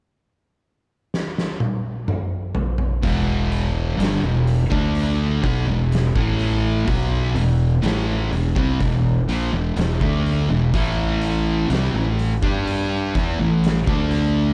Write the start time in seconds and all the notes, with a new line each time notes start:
1.14 snare
1.38 snare
1.60 high tom
2.08 mid tom
2.55 floor tom
2.78 floor tom
3.02 E1 E2 B2 E3, kick, open hi-hat
3.52 open hi-hat
3.98 G1 G2 D3, open hi-hat
4.03 snare
4.22 E1 E2 B2
4.47 open hi-hat
4.70 D2 D3 A3 D4, kick
4.95 open hi-hat
5.43 B1 B2 F#3, kick, open hi-hat
5.67 E1 E2 B2
5.92 snare, open hi-hat
6.15 A1 A2 E3 A3, kick
6.39 open hi-hat
6.87 B1 B2 F#3 B3, kick, open hi-hat
7.35 E1 E2 B2, open hi-hat
7.82 A1 A2 E3 A3, open hi-hat
7.86 snare
8.31 E1 E2 B2, open hi-hat
8.56 C2 C3 G3, kick
8.80 E1 E2 B2, kick, open hi-hat
9.28 A#1 A#2 F3, open hi-hat
9.51 E1 E2 B2
9.76 E1 E2 B2, snare, open hi-hat
10.01 D2 D3 A3 D4, kick
10.26 open hi-hat
10.48 E1 E2 B2
10.74 A1 A2 E3 A3, kick, open hi-hat
11.22 open hi-hat
11.70 C2 C3 G3, snare, open hi-hat
11.93 A1 A2 E3
12.19 open hi-hat
12.42 G2 G3 D4 G4, kick
12.67 open hi-hat
13.15 E2 E3 B3, kick, open hi-hat
13.39 A1 A2 E3
13.64 snare, open hi-hat
13.87 D2 D3 A3 D4, kick
14.11 open hi-hat